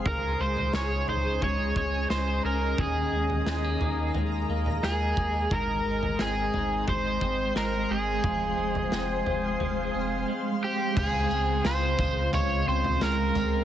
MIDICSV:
0, 0, Header, 1, 6, 480
1, 0, Start_track
1, 0, Key_signature, -5, "major"
1, 0, Tempo, 681818
1, 41, Time_signature, 4, 2, 24, 8
1, 9603, End_track
2, 0, Start_track
2, 0, Title_t, "Ambient pad"
2, 0, Program_c, 0, 92
2, 0, Note_on_c, 0, 68, 73
2, 42, Note_on_c, 0, 80, 77
2, 43, Note_on_c, 0, 61, 66
2, 45, Note_on_c, 0, 75, 64
2, 1942, Note_off_c, 0, 80, 0
2, 1943, Note_off_c, 0, 61, 0
2, 1960, Note_on_c, 0, 82, 76
2, 1962, Note_on_c, 0, 70, 67
2, 3850, Note_off_c, 0, 68, 0
2, 3862, Note_off_c, 0, 70, 0
2, 3862, Note_off_c, 0, 82, 0
2, 3878, Note_on_c, 0, 84, 76
2, 3879, Note_on_c, 0, 56, 72
2, 3879, Note_on_c, 0, 72, 66
2, 5775, Note_off_c, 0, 75, 0
2, 5804, Note_on_c, 0, 77, 61
2, 7691, Note_off_c, 0, 84, 0
2, 7692, Note_off_c, 0, 56, 0
2, 7692, Note_off_c, 0, 72, 0
2, 7703, Note_off_c, 0, 77, 0
2, 7726, Note_on_c, 0, 65, 84
2, 7727, Note_on_c, 0, 56, 69
2, 7728, Note_on_c, 0, 49, 74
2, 9603, Note_off_c, 0, 49, 0
2, 9603, Note_off_c, 0, 56, 0
2, 9603, Note_off_c, 0, 65, 0
2, 9603, End_track
3, 0, Start_track
3, 0, Title_t, "Electric slide guitar"
3, 0, Program_c, 1, 29
3, 51, Note_on_c, 1, 70, 79
3, 286, Note_on_c, 1, 72, 80
3, 293, Note_off_c, 1, 70, 0
3, 529, Note_off_c, 1, 72, 0
3, 532, Note_on_c, 1, 73, 87
3, 767, Note_off_c, 1, 73, 0
3, 770, Note_on_c, 1, 72, 86
3, 1009, Note_off_c, 1, 72, 0
3, 1012, Note_on_c, 1, 73, 97
3, 1230, Note_off_c, 1, 73, 0
3, 1248, Note_on_c, 1, 73, 82
3, 1480, Note_off_c, 1, 73, 0
3, 1483, Note_on_c, 1, 72, 87
3, 1726, Note_off_c, 1, 72, 0
3, 1729, Note_on_c, 1, 70, 75
3, 1967, Note_on_c, 1, 68, 67
3, 1972, Note_off_c, 1, 70, 0
3, 2896, Note_off_c, 1, 68, 0
3, 3413, Note_on_c, 1, 68, 81
3, 3892, Note_on_c, 1, 70, 84
3, 3901, Note_off_c, 1, 68, 0
3, 4369, Note_on_c, 1, 68, 79
3, 4381, Note_off_c, 1, 70, 0
3, 4817, Note_off_c, 1, 68, 0
3, 4851, Note_on_c, 1, 72, 100
3, 5298, Note_off_c, 1, 72, 0
3, 5331, Note_on_c, 1, 70, 91
3, 5569, Note_on_c, 1, 68, 76
3, 5573, Note_off_c, 1, 70, 0
3, 7217, Note_off_c, 1, 68, 0
3, 7492, Note_on_c, 1, 67, 69
3, 7728, Note_off_c, 1, 67, 0
3, 7731, Note_on_c, 1, 68, 81
3, 8208, Note_on_c, 1, 72, 90
3, 8220, Note_off_c, 1, 68, 0
3, 8656, Note_off_c, 1, 72, 0
3, 8691, Note_on_c, 1, 73, 114
3, 8928, Note_off_c, 1, 73, 0
3, 8931, Note_on_c, 1, 72, 94
3, 9149, Note_off_c, 1, 72, 0
3, 9172, Note_on_c, 1, 70, 90
3, 9603, Note_off_c, 1, 70, 0
3, 9603, End_track
4, 0, Start_track
4, 0, Title_t, "Clean electric guitar"
4, 0, Program_c, 2, 27
4, 0, Note_on_c, 2, 56, 56
4, 0, Note_on_c, 2, 60, 51
4, 45, Note_on_c, 2, 49, 66
4, 48, Note_on_c, 2, 63, 59
4, 91, Note_off_c, 2, 60, 0
4, 280, Note_off_c, 2, 56, 0
4, 283, Note_on_c, 2, 56, 47
4, 522, Note_on_c, 2, 61, 59
4, 761, Note_off_c, 2, 63, 0
4, 763, Note_on_c, 2, 63, 58
4, 1000, Note_off_c, 2, 56, 0
4, 1003, Note_on_c, 2, 56, 57
4, 1235, Note_off_c, 2, 61, 0
4, 1243, Note_on_c, 2, 61, 49
4, 1479, Note_off_c, 2, 56, 0
4, 1482, Note_on_c, 2, 56, 51
4, 1715, Note_off_c, 2, 61, 0
4, 1723, Note_on_c, 2, 61, 52
4, 1961, Note_off_c, 2, 49, 0
4, 1964, Note_on_c, 2, 51, 72
4, 1965, Note_off_c, 2, 63, 0
4, 1968, Note_on_c, 2, 63, 59
4, 2010, Note_off_c, 2, 61, 0
4, 2202, Note_off_c, 2, 56, 0
4, 2205, Note_on_c, 2, 56, 54
4, 2445, Note_off_c, 2, 56, 0
4, 2445, Note_on_c, 2, 56, 53
4, 2565, Note_off_c, 2, 56, 0
4, 2565, Note_on_c, 2, 58, 49
4, 2682, Note_off_c, 2, 63, 0
4, 2685, Note_on_c, 2, 63, 58
4, 2926, Note_on_c, 2, 56, 54
4, 3157, Note_off_c, 2, 58, 0
4, 3166, Note_on_c, 2, 58, 53
4, 3403, Note_off_c, 2, 56, 0
4, 3406, Note_on_c, 2, 56, 54
4, 3638, Note_off_c, 2, 58, 0
4, 3646, Note_on_c, 2, 58, 57
4, 3884, Note_on_c, 2, 44, 69
4, 3886, Note_off_c, 2, 63, 0
4, 3888, Note_on_c, 2, 63, 56
4, 3932, Note_off_c, 2, 58, 0
4, 4119, Note_off_c, 2, 56, 0
4, 4122, Note_on_c, 2, 56, 54
4, 4362, Note_on_c, 2, 60, 58
4, 4428, Note_off_c, 2, 51, 0
4, 4595, Note_off_c, 2, 63, 0
4, 4604, Note_on_c, 2, 63, 57
4, 4843, Note_off_c, 2, 56, 0
4, 4846, Note_on_c, 2, 56, 59
4, 5081, Note_off_c, 2, 60, 0
4, 5083, Note_on_c, 2, 60, 55
4, 5317, Note_off_c, 2, 56, 0
4, 5320, Note_on_c, 2, 56, 57
4, 5558, Note_off_c, 2, 60, 0
4, 5561, Note_on_c, 2, 60, 56
4, 5799, Note_on_c, 2, 53, 70
4, 5802, Note_off_c, 2, 44, 0
4, 5802, Note_off_c, 2, 63, 0
4, 5805, Note_on_c, 2, 65, 50
4, 6040, Note_off_c, 2, 56, 0
4, 6043, Note_on_c, 2, 56, 57
4, 6277, Note_off_c, 2, 60, 0
4, 6280, Note_on_c, 2, 60, 56
4, 6519, Note_off_c, 2, 65, 0
4, 6522, Note_on_c, 2, 65, 55
4, 6759, Note_off_c, 2, 56, 0
4, 6762, Note_on_c, 2, 56, 57
4, 6999, Note_off_c, 2, 60, 0
4, 7002, Note_on_c, 2, 60, 50
4, 7239, Note_off_c, 2, 56, 0
4, 7242, Note_on_c, 2, 56, 54
4, 7478, Note_off_c, 2, 60, 0
4, 7481, Note_on_c, 2, 60, 54
4, 7720, Note_off_c, 2, 53, 0
4, 7723, Note_on_c, 2, 49, 82
4, 7965, Note_off_c, 2, 60, 0
4, 7968, Note_on_c, 2, 60, 59
4, 8201, Note_off_c, 2, 65, 0
4, 8204, Note_on_c, 2, 65, 71
4, 8674, Note_off_c, 2, 65, 0
4, 8683, Note_on_c, 2, 65, 69
4, 8919, Note_off_c, 2, 60, 0
4, 8922, Note_on_c, 2, 60, 62
4, 9157, Note_off_c, 2, 56, 0
4, 9160, Note_on_c, 2, 56, 59
4, 9402, Note_off_c, 2, 60, 0
4, 9404, Note_on_c, 2, 60, 62
4, 9603, Note_off_c, 2, 49, 0
4, 9603, Note_off_c, 2, 56, 0
4, 9603, Note_off_c, 2, 60, 0
4, 9603, Note_off_c, 2, 65, 0
4, 9603, End_track
5, 0, Start_track
5, 0, Title_t, "Analog synth bass"
5, 0, Program_c, 3, 38
5, 41, Note_on_c, 3, 37, 86
5, 252, Note_off_c, 3, 37, 0
5, 280, Note_on_c, 3, 37, 95
5, 492, Note_off_c, 3, 37, 0
5, 522, Note_on_c, 3, 37, 96
5, 733, Note_off_c, 3, 37, 0
5, 762, Note_on_c, 3, 37, 90
5, 973, Note_off_c, 3, 37, 0
5, 1001, Note_on_c, 3, 37, 100
5, 1212, Note_off_c, 3, 37, 0
5, 1237, Note_on_c, 3, 37, 95
5, 1450, Note_off_c, 3, 37, 0
5, 1479, Note_on_c, 3, 37, 93
5, 1691, Note_off_c, 3, 37, 0
5, 1719, Note_on_c, 3, 37, 90
5, 1931, Note_off_c, 3, 37, 0
5, 1961, Note_on_c, 3, 39, 89
5, 2172, Note_off_c, 3, 39, 0
5, 2197, Note_on_c, 3, 39, 101
5, 2410, Note_off_c, 3, 39, 0
5, 2436, Note_on_c, 3, 39, 90
5, 2650, Note_off_c, 3, 39, 0
5, 2679, Note_on_c, 3, 39, 97
5, 2891, Note_off_c, 3, 39, 0
5, 2920, Note_on_c, 3, 39, 92
5, 3132, Note_off_c, 3, 39, 0
5, 3161, Note_on_c, 3, 39, 106
5, 3372, Note_off_c, 3, 39, 0
5, 3402, Note_on_c, 3, 39, 98
5, 3613, Note_off_c, 3, 39, 0
5, 3640, Note_on_c, 3, 39, 80
5, 3852, Note_off_c, 3, 39, 0
5, 3881, Note_on_c, 3, 32, 92
5, 4092, Note_off_c, 3, 32, 0
5, 4124, Note_on_c, 3, 32, 92
5, 4334, Note_off_c, 3, 32, 0
5, 4361, Note_on_c, 3, 32, 101
5, 4572, Note_off_c, 3, 32, 0
5, 4603, Note_on_c, 3, 32, 93
5, 4813, Note_off_c, 3, 32, 0
5, 4842, Note_on_c, 3, 32, 99
5, 5053, Note_off_c, 3, 32, 0
5, 5079, Note_on_c, 3, 32, 96
5, 5291, Note_off_c, 3, 32, 0
5, 5322, Note_on_c, 3, 32, 92
5, 5533, Note_off_c, 3, 32, 0
5, 5560, Note_on_c, 3, 32, 90
5, 5772, Note_off_c, 3, 32, 0
5, 5799, Note_on_c, 3, 29, 90
5, 6011, Note_off_c, 3, 29, 0
5, 6040, Note_on_c, 3, 29, 89
5, 6251, Note_off_c, 3, 29, 0
5, 6280, Note_on_c, 3, 29, 99
5, 6491, Note_off_c, 3, 29, 0
5, 6520, Note_on_c, 3, 29, 100
5, 6732, Note_off_c, 3, 29, 0
5, 6759, Note_on_c, 3, 29, 94
5, 6971, Note_off_c, 3, 29, 0
5, 7003, Note_on_c, 3, 29, 97
5, 7213, Note_off_c, 3, 29, 0
5, 7721, Note_on_c, 3, 37, 97
5, 7932, Note_off_c, 3, 37, 0
5, 7964, Note_on_c, 3, 37, 95
5, 8174, Note_off_c, 3, 37, 0
5, 8200, Note_on_c, 3, 37, 102
5, 8412, Note_off_c, 3, 37, 0
5, 8439, Note_on_c, 3, 37, 100
5, 8651, Note_off_c, 3, 37, 0
5, 8685, Note_on_c, 3, 37, 101
5, 8895, Note_off_c, 3, 37, 0
5, 8922, Note_on_c, 3, 37, 114
5, 9133, Note_off_c, 3, 37, 0
5, 9161, Note_on_c, 3, 37, 93
5, 9372, Note_off_c, 3, 37, 0
5, 9401, Note_on_c, 3, 37, 101
5, 9603, Note_off_c, 3, 37, 0
5, 9603, End_track
6, 0, Start_track
6, 0, Title_t, "Drums"
6, 39, Note_on_c, 9, 43, 102
6, 40, Note_on_c, 9, 36, 96
6, 110, Note_off_c, 9, 36, 0
6, 110, Note_off_c, 9, 43, 0
6, 400, Note_on_c, 9, 43, 58
6, 470, Note_off_c, 9, 43, 0
6, 517, Note_on_c, 9, 38, 100
6, 588, Note_off_c, 9, 38, 0
6, 761, Note_on_c, 9, 43, 61
6, 831, Note_off_c, 9, 43, 0
6, 998, Note_on_c, 9, 43, 61
6, 1000, Note_on_c, 9, 36, 89
6, 1068, Note_off_c, 9, 43, 0
6, 1071, Note_off_c, 9, 36, 0
6, 1238, Note_on_c, 9, 36, 79
6, 1308, Note_off_c, 9, 36, 0
6, 1480, Note_on_c, 9, 38, 90
6, 1550, Note_off_c, 9, 38, 0
6, 1960, Note_on_c, 9, 36, 96
6, 1960, Note_on_c, 9, 43, 98
6, 2030, Note_off_c, 9, 36, 0
6, 2030, Note_off_c, 9, 43, 0
6, 2322, Note_on_c, 9, 43, 59
6, 2392, Note_off_c, 9, 43, 0
6, 2439, Note_on_c, 9, 38, 107
6, 2510, Note_off_c, 9, 38, 0
6, 2680, Note_on_c, 9, 43, 60
6, 2751, Note_off_c, 9, 43, 0
6, 2919, Note_on_c, 9, 43, 64
6, 2989, Note_off_c, 9, 43, 0
6, 3282, Note_on_c, 9, 43, 53
6, 3352, Note_off_c, 9, 43, 0
6, 3402, Note_on_c, 9, 38, 83
6, 3472, Note_off_c, 9, 38, 0
6, 3640, Note_on_c, 9, 36, 78
6, 3711, Note_off_c, 9, 36, 0
6, 3880, Note_on_c, 9, 36, 95
6, 3880, Note_on_c, 9, 43, 98
6, 3950, Note_off_c, 9, 36, 0
6, 3950, Note_off_c, 9, 43, 0
6, 4243, Note_on_c, 9, 43, 61
6, 4314, Note_off_c, 9, 43, 0
6, 4358, Note_on_c, 9, 38, 101
6, 4429, Note_off_c, 9, 38, 0
6, 4602, Note_on_c, 9, 43, 62
6, 4673, Note_off_c, 9, 43, 0
6, 4839, Note_on_c, 9, 43, 63
6, 4841, Note_on_c, 9, 36, 92
6, 4909, Note_off_c, 9, 43, 0
6, 4912, Note_off_c, 9, 36, 0
6, 5078, Note_on_c, 9, 36, 73
6, 5149, Note_off_c, 9, 36, 0
6, 5321, Note_on_c, 9, 38, 91
6, 5392, Note_off_c, 9, 38, 0
6, 5800, Note_on_c, 9, 36, 95
6, 5800, Note_on_c, 9, 43, 96
6, 5870, Note_off_c, 9, 36, 0
6, 5870, Note_off_c, 9, 43, 0
6, 6161, Note_on_c, 9, 43, 62
6, 6232, Note_off_c, 9, 43, 0
6, 6279, Note_on_c, 9, 38, 96
6, 6350, Note_off_c, 9, 38, 0
6, 6522, Note_on_c, 9, 43, 59
6, 6593, Note_off_c, 9, 43, 0
6, 6759, Note_on_c, 9, 43, 62
6, 6830, Note_off_c, 9, 43, 0
6, 7720, Note_on_c, 9, 43, 119
6, 7720, Note_on_c, 9, 49, 98
6, 7720, Note_on_c, 9, 54, 64
6, 7721, Note_on_c, 9, 36, 110
6, 7791, Note_off_c, 9, 36, 0
6, 7791, Note_off_c, 9, 43, 0
6, 7791, Note_off_c, 9, 49, 0
6, 7791, Note_off_c, 9, 54, 0
6, 7961, Note_on_c, 9, 54, 66
6, 8031, Note_off_c, 9, 54, 0
6, 8199, Note_on_c, 9, 38, 117
6, 8200, Note_on_c, 9, 54, 95
6, 8270, Note_off_c, 9, 38, 0
6, 8271, Note_off_c, 9, 54, 0
6, 8439, Note_on_c, 9, 36, 86
6, 8443, Note_on_c, 9, 43, 67
6, 8443, Note_on_c, 9, 54, 70
6, 8509, Note_off_c, 9, 36, 0
6, 8514, Note_off_c, 9, 43, 0
6, 8514, Note_off_c, 9, 54, 0
6, 8680, Note_on_c, 9, 43, 71
6, 8680, Note_on_c, 9, 54, 70
6, 8751, Note_off_c, 9, 43, 0
6, 8751, Note_off_c, 9, 54, 0
6, 9042, Note_on_c, 9, 43, 63
6, 9112, Note_off_c, 9, 43, 0
6, 9160, Note_on_c, 9, 54, 81
6, 9162, Note_on_c, 9, 38, 102
6, 9230, Note_off_c, 9, 54, 0
6, 9232, Note_off_c, 9, 38, 0
6, 9400, Note_on_c, 9, 43, 66
6, 9400, Note_on_c, 9, 54, 64
6, 9471, Note_off_c, 9, 43, 0
6, 9471, Note_off_c, 9, 54, 0
6, 9603, End_track
0, 0, End_of_file